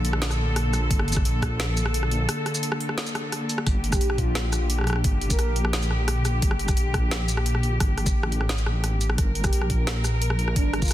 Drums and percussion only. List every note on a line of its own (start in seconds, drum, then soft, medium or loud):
0.05 closed hi-hat soft
0.13 cross-stick medium
0.22 snare loud
0.22 closed hi-hat medium
0.30 cross-stick medium
0.30 shaker soft
0.56 cross-stick medium
0.56 closed hi-hat medium
0.73 cross-stick medium
0.73 closed hi-hat soft
0.73 shaker soft
0.91 kick loud
0.91 closed hi-hat medium
0.99 cross-stick medium
1.08 closed hi-hat soft
1.12 shaker medium
1.17 kick loud
1.17 cross-stick medium
1.25 closed hi-hat medium
1.42 kick medium
1.42 cross-stick medium
1.42 closed hi-hat soft
1.60 cross-stick medium
1.60 snare loud
1.60 closed hi-hat medium
1.77 shaker medium
1.86 cross-stick medium
1.94 closed hi-hat medium
2.03 cross-stick medium
2.11 closed hi-hat soft
2.29 cross-stick medium
2.29 closed hi-hat medium
2.46 cross-stick medium
2.46 closed hi-hat soft
2.55 shaker medium
2.63 closed hi-hat medium
2.72 cross-stick medium
2.81 closed hi-hat soft
2.89 cross-stick medium
2.98 snare loud
2.98 closed hi-hat medium
3.06 shaker soft
3.15 cross-stick medium
3.15 closed hi-hat soft
3.32 cross-stick medium
3.32 closed hi-hat medium
3.49 closed hi-hat soft
3.49 shaker soft
3.58 cross-stick medium
3.67 kick loud
3.67 cross-stick medium
3.67 closed hi-hat medium
3.84 closed hi-hat soft
3.92 kick loud
3.92 cross-stick medium
3.92 shaker medium
4.01 closed hi-hat medium
4.10 cross-stick medium
4.18 kick medium
4.18 closed hi-hat soft
4.35 cross-stick medium
4.35 snare loud
4.35 closed hi-hat medium
4.53 cross-stick medium
4.53 shaker medium
4.70 closed hi-hat medium
4.79 cross-stick soft
4.81 cross-stick soft
4.84 cross-stick medium
4.87 cross-stick medium
4.87 closed hi-hat soft
4.90 cross-stick medium
4.93 cross-stick medium
4.96 cross-stick medium
5.04 kick loud
5.04 closed hi-hat medium
5.21 closed hi-hat soft
5.30 kick loud
5.30 shaker medium
5.39 cross-stick medium
5.39 closed hi-hat medium
5.56 closed hi-hat soft
5.65 cross-stick medium
5.73 snare loud
5.73 closed hi-hat medium
5.82 shaker soft
5.91 cross-stick medium
6.08 cross-stick medium
6.08 closed hi-hat medium
6.25 cross-stick medium
6.25 closed hi-hat soft
6.25 shaker soft
6.42 kick loud
6.42 closed hi-hat medium
6.51 cross-stick medium
6.59 closed hi-hat soft
6.68 kick loud
6.68 cross-stick medium
6.68 shaker medium
6.77 closed hi-hat medium
6.94 kick medium
6.94 cross-stick medium
6.94 closed hi-hat soft
7.11 cross-stick medium
7.11 snare loud
7.11 closed hi-hat medium
7.29 shaker medium
7.37 cross-stick medium
7.46 closed hi-hat medium
7.55 cross-stick medium
7.63 closed hi-hat soft
7.80 kick loud
7.80 cross-stick medium
7.80 closed hi-hat medium
7.98 cross-stick medium
7.98 closed hi-hat soft
8.06 kick loud
8.06 shaker medium
8.23 cross-stick medium
8.32 closed hi-hat soft
8.41 cross-stick medium
8.49 snare loud
8.49 closed hi-hat medium
8.58 shaker soft
8.66 cross-stick medium
8.84 cross-stick medium
8.84 closed hi-hat medium
9.01 closed hi-hat soft
9.01 shaker soft
9.10 cross-stick medium
9.18 kick loud
9.18 cross-stick medium
9.18 closed hi-hat medium
9.35 closed hi-hat soft
9.44 kick loud
9.44 cross-stick medium
9.44 shaker medium
9.53 closed hi-hat medium
9.62 cross-stick medium
9.70 kick medium
9.70 closed hi-hat soft
9.87 cross-stick medium
9.87 snare loud
9.87 closed hi-hat medium
10.04 cross-stick soft
10.04 shaker medium
10.22 closed hi-hat medium
10.30 cross-stick medium
10.39 closed hi-hat soft
10.48 cross-stick medium
10.56 kick loud
10.56 closed hi-hat medium
10.73 cross-stick medium
10.73 closed hi-hat soft
10.82 kick loud
10.82 shaker soft
10.85 shaker soft
10.88 shaker soft